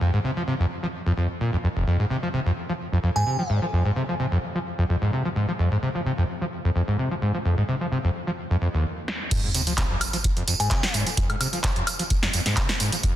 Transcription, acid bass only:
0.01 F2
0.13 G#2
0.24 C3
0.37 F3
0.48 C3
0.60 F2
0.83 F3
1.06 F2
1.17 F2
1.41 A#2
1.53 F2
1.64 F2
1.76 F1
1.87 F2
1.99 G#2
2.10 C3
2.23 F3
2.34 C3
2.46 F2
2.69 F3
2.93 F2
3.03 F2
3.16 G#2
3.27 C3
3.39 F3
3.50 G#2
3.62 F3
3.73 F2
3.85 G#2
3.96 C3
4.09 F3
4.20 C3
4.32 F2
4.55 F3
4.78 F2
4.89 F2
5.02 G#2
5.13 C3
5.25 F3
5.36 G#2
5.49 F3
5.59 F2
5.72 G#2
5.83 C3
5.95 F3
6.06 C3
6.18 F2
6.41 F3
6.65 F2
6.76 F2
6.88 G#2
6.99 C3
7.11 F3
7.22 G#2
7.34 F3
7.45 F2
7.58 G#2
7.69 C3
7.81 F3
7.92 C3
8.04 F2
8.27 F3
8.51 F2
8.61 F2
8.74 D#2
9.31 F2
9.44 G#2
9.55 C3
9.67 F3
9.78 C3
9.90 F2
10.13 F3
10.37 F2
10.48 F2
10.60 G#2
10.71 C3
10.83 F3
10.94 G#2
11.06 F3
11.17 F2
11.30 G#2
11.40 C3
11.53 F3
11.64 C3
11.76 F2
11.99 F3
12.23 F2
12.34 F2
12.46 G#2
12.69 F3
12.80 G#2
12.93 F3
13.04 F2

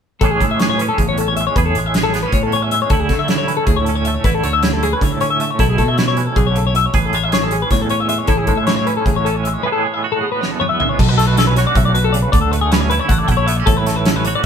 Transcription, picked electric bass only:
0.22 A1
0.40 A2
0.98 A1
1.56 E2
1.76 A1
2.33 A2
2.90 D2
3.09 D3
3.67 D2
4.25 A1
4.44 D2
5.01 D3
5.59 B1
5.78 B2
6.36 B1
6.94 A1
7.13 A1
7.71 A2
8.28 A1
8.48 A2
9.06 A1
10.99 B1
11.75 B1
12.33 D2
13.09 A1
13.29 A#1
13.67 A1

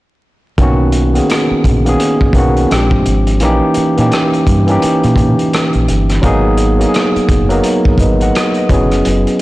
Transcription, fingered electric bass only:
0.59 B1
1.51 muted fingered electric bass stroke
1.65 A#1
2.22 muted fingered electric bass stroke
2.34 B1
2.72 A#1
3.07 G#1
3.42 A#1
3.77 muted fingered electric bass stroke
3.99 A#2
4.48 G2
4.84 muted fingered electric bass stroke
5.04 A#2
5.75 A#1
5.90 G1
6.24 G#1
7.16 muted fingered electric bass stroke
7.30 F#1
7.86 muted fingered electric bass stroke
7.99 G#1
8.70 F#1
9.07 F#1

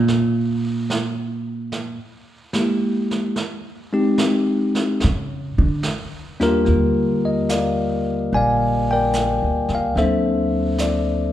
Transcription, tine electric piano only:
2.53 G#3 A#3 E4 G4
3.92 G#3 C4 D#4 G4
6.40 D#2 G3 A#3 D4 F4 A#4
6.45 F4 G4
6.64 D3 G3 A#3
6.69 F4
7.25 D#5
7.50 A#4 D5 F5
8.34 D5 F5 G#5
8.91 A#4 D5 G5
9.75 F5
9.95 F#3 A#3 C4 A4 C5 E5
10.01 D4
10.80 D5

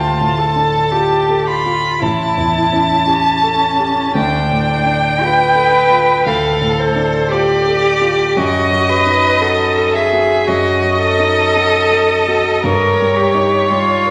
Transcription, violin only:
Already playing: A5
1.48 B5
2.02 A5
4.16 G5
6.26 F5
6.79 C5
7.32 D5
8.36 D#5
9.95 E5
10.48 D#5
12.65 C#5

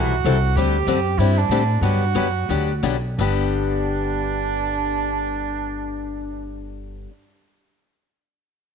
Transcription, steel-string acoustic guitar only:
Already playing: C3 E3 G3 C4 E4 A4
0.25 C3 E3 G3 C4 E4 A4
0.57 D3 G3 C4 D4 G4
0.87 D3 G3 C4 D4 G4
1.19 D3 G3 C4 D4 G4
1.51 D3 G3 C4 D4 G4
1.82 D3 F#3 B3 D4 G4
2.14 D3 F#3 B3 D4 G4
2.49 D3 F#3 B3 D4 G4
2.83 D3 F#3 B3 D4 G4
3.19 G2 D3 B3 D4 G4

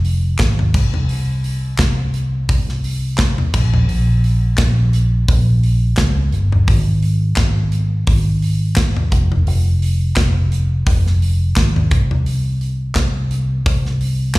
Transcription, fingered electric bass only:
Already playing: F1
0.40 G#1
0.74 C2
1.79 C2
2.49 C2
3.54 A#1
3.88 A#1
4.58 A#1
5.28 A#1
5.98 C#2
6.33 G1
6.68 G#1
7.37 G#1
8.07 G#1
9.12 F1
9.47 F1
10.16 F1
10.87 F1
11.57 G#1
11.91 C2
12.96 C2
13.66 C2

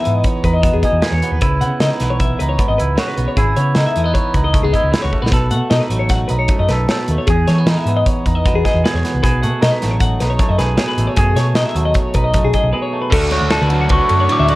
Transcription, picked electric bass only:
0.07 G#2
0.44 E2
0.74 E2
0.92 E2
1.12 E2
1.31 D#2
1.41 C#2
1.61 C#3
1.80 C#3
2.01 B1
2.40 C#2
2.69 G#1
2.81 C#2
3.18 B1
3.37 G#1
3.57 C#3
3.76 C#3
3.96 E2
4.35 C#2
4.64 C#2
4.84 C#2
5.04 C#2
5.23 A#1
5.32 B1
5.51 B2
5.71 B2
5.90 A1
6.30 B1
6.59 F#2
6.69 B1
7.08 D#2
7.28 E2
7.48 E3
7.66 E3
7.85 G#2
8.25 E2
8.54 E2
8.74 E2
8.94 E2
9.14 C2
9.23 B1
9.44 B2
9.63 B2
9.84 A1
10.21 B1
10.50 F#2
10.59 B1
10.98 A1
11.17 F#2
11.35 B2
11.55 B2
11.75 D#2
12.15 B1
12.44 B1
12.63 B1
13.13 D2
13.42 D2
13.62 D2
13.89 C#2
14.10 F#2
14.39 D2

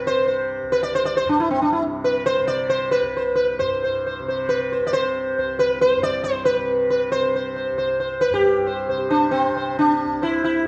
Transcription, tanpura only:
Already playing: C2 G2 C3
0.05 C3
0.63 C2
1.25 G2
1.83 C3
2.41 C3
3.01 C2
3.60 G2
4.20 C3
4.78 C3
5.38 C2
5.97 G2
6.55 C3
7.13 C3
7.72 C2
8.30 G2
8.90 C3
9.48 C3
10.06 C2

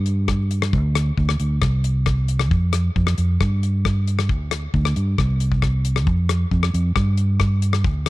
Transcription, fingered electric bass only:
Already playing: G2
0.73 D2
1.18 D2
1.40 D2
1.62 C2
2.51 F2
2.96 F2
3.18 F2
3.41 G2
4.29 D2
4.74 D2
4.96 G2
5.18 C2
6.07 F2
6.51 F2
6.74 F2
6.96 G2
7.85 D2

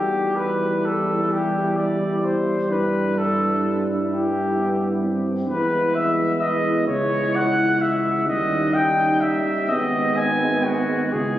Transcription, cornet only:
Already playing: G4
0.36 B4
0.85 A4
1.32 G4
1.77 D5
2.25 C5
2.71 B4
3.18 A4
4.11 G4
5.49 B4
5.95 E5
6.40 D#5
6.87 C#5
7.36 F#5
7.82 E5
8.28 D#5
8.74 G5
9.21 E5
9.69 D#5
10.16 G#5
10.64 F#4
11.13 G#4

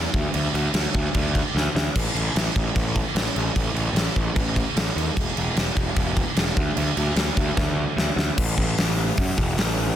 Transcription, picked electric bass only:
0.14 D2
0.34 D2
0.54 D2
0.74 D2
0.94 D2
1.15 D2
1.54 D2
1.75 D2
1.96 A1
2.15 A1
2.35 A1
2.56 A1
2.75 A1
3.15 A1
3.36 A1
3.56 A1
3.74 A1
3.93 A1
4.16 A1
4.36 A1
4.77 A1
4.96 D#2
5.17 E1
5.36 E1
5.56 E1
5.76 E1
5.96 E1
6.37 E1
6.57 D2
6.77 D2
6.97 D2
7.16 D2
7.37 D2
7.57 D2
7.97 D2
8.16 D2
8.38 A1
8.57 A1
8.78 A1
9.18 F#2
9.37 E1
9.57 A1

